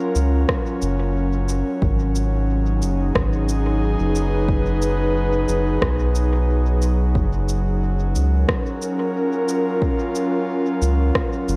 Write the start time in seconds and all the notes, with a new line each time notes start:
Already playing: F#3 C#4 F4 A#4
0.15 C#2, cabasa
0.49 kick, cross-stick
0.82 F#1, cabasa
1.49 cabasa
1.82 G#1, kick
2.02 D#4
2.15 cabasa
2.39 G#4
2.82 F#1, cabasa
3.15 G#1, kick, cross-stick
3.49 cabasa
3.84 B4
4.00 F#1
4.15 cabasa
4.49 kick
4.82 cabasa
5.49 F#1, cabasa
5.82 B1, kick, cross-stick
6.15 cabasa
6.82 cabasa
7.15 F#1, kick
7.49 cabasa
7.67 C#4
8.08 A#4
8.15 C#2, cabasa
8.49 kick, cross-stick
8.60 F4
8.82 cabasa
9.49 cabasa
9.82 kick
10.15 cabasa
10.82 C#2, cabasa
11.15 kick, cross-stick
11.48 F#1, cabasa